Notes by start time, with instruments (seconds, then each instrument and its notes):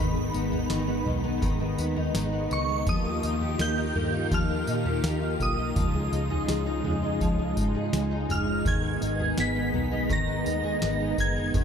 Already playing: fingered electric bass G#1, twelve-string acoustic guitar D#3 B3 D#4, string machine G#3 B3 D#4, synth bell B5
0.16 twelve-string acoustic guitar D#3
0.33 fingered electric bass G#1, twelve-string acoustic guitar B3, tambourine
0.52 twelve-string acoustic guitar D#4, floor tom
0.70 fingered electric bass G#1, twelve-string acoustic guitar D#3, snare, tambourine
0.88 twelve-string acoustic guitar B3
1.06 fingered electric bass B1, twelve-string acoustic guitar D#3, floor tom
1.24 twelve-string acoustic guitar B3
1.42 fingered electric bass G#1, twelve-string acoustic guitar D#3, kick, floor tom, tambourine
1.60 twelve-string acoustic guitar D#3
1.78 fingered electric bass D#2, twelve-string acoustic guitar B3, tambourine
1.96 twelve-string acoustic guitar D#4, floor tom
2.14 fingered electric bass G#1, twelve-string acoustic guitar D#3, snare, tambourine
2.33 twelve-string acoustic guitar B3
2.51 fingered electric bass C#2, twelve-string acoustic guitar D#3, synth bell C#6, tambourine
2.69 twelve-string acoustic guitar B3
2.86 fingered electric bass D#2, string machine D#3 A#3 F4 G4, twelve-string acoustic guitar F3, synth bell D#6, kick, floor tom, tambourine
3.05 twelve-string acoustic guitar A#3
3.23 fingered electric bass D#2, twelve-string acoustic guitar D#4, tambourine
3.41 twelve-string acoustic guitar G4, floor tom
3.59 fingered electric bass D#2, twelve-string acoustic guitar A#3, synth bell G6, snare, tambourine
3.77 twelve-string acoustic guitar D#4
3.95 fingered electric bass G2, twelve-string acoustic guitar A#3, floor tom
4.13 twelve-string acoustic guitar D#4
4.31 fingered electric bass D#2, twelve-string acoustic guitar F3, synth bell F6, kick, floor tom, tambourine
4.50 twelve-string acoustic guitar A#3
4.67 fingered electric bass A#2, twelve-string acoustic guitar D#4, tambourine
4.85 twelve-string acoustic guitar G4, floor tom
5.03 fingered electric bass D#2, twelve-string acoustic guitar A#3, snare, tambourine
5.22 twelve-string acoustic guitar D#4
5.40 fingered electric bass B1, twelve-string acoustic guitar A#3, synth bell D#6, kick, tambourine
5.58 twelve-string acoustic guitar D#4
5.76 fingered electric bass C#2, string machine C#3 G#3 D#4, twelve-string acoustic guitar F3, kick, floor tom, tambourine
5.94 twelve-string acoustic guitar G#3
6.12 fingered electric bass C#2, twelve-string acoustic guitar D#4, tambourine
6.30 twelve-string acoustic guitar G#4, floor tom
6.48 fingered electric bass C#2, twelve-string acoustic guitar G#3, snare, tambourine
6.66 twelve-string acoustic guitar D#4
6.84 fingered electric bass F2, twelve-string acoustic guitar G#3, floor tom
7.03 twelve-string acoustic guitar D#4
7.21 fingered electric bass C#2, twelve-string acoustic guitar F3, kick, floor tom, tambourine
7.38 twelve-string acoustic guitar G#3
7.57 fingered electric bass G#2, twelve-string acoustic guitar D#4, kick, tambourine
7.75 twelve-string acoustic guitar G#4
7.93 fingered electric bass C#2, twelve-string acoustic guitar G#3, snare, tambourine
8.11 twelve-string acoustic guitar D#4
8.29 fingered electric bass F#1, twelve-string acoustic guitar G#3, synth bell F6, floor tom, tambourine
8.47 twelve-string acoustic guitar D#4
8.65 fingered electric bass G#1, twelve-string acoustic guitar D#3, string machine B3, synth bell G#6, kick, floor tom, tambourine
8.83 twelve-string acoustic guitar B3
9.01 fingered electric bass G#1, twelve-string acoustic guitar D#4, tambourine
9.19 twelve-string acoustic guitar G#4, floor tom
9.37 fingered electric bass G#1, twelve-string acoustic guitar B3, synth bell B6, snare, tambourine
9.55 twelve-string acoustic guitar D#4
9.74 fingered electric bass B1, twelve-string acoustic guitar B3, floor tom
9.91 twelve-string acoustic guitar D#4
10.09 fingered electric bass G#1, twelve-string acoustic guitar D#3, synth bell A#6, kick, floor tom, tambourine
10.27 twelve-string acoustic guitar B3
10.46 fingered electric bass D#2, twelve-string acoustic guitar D#4, tambourine
10.64 twelve-string acoustic guitar G#4, floor tom
10.82 fingered electric bass G#1, twelve-string acoustic guitar B3, snare, tambourine
11.00 twelve-string acoustic guitar D#4
11.18 fingered electric bass F#1, twelve-string acoustic guitar B3, synth bell G#6, kick, tambourine
11.36 twelve-string acoustic guitar D#4
11.54 fingered electric bass G#1, twelve-string acoustic guitar D#3, kick, floor tom, tambourine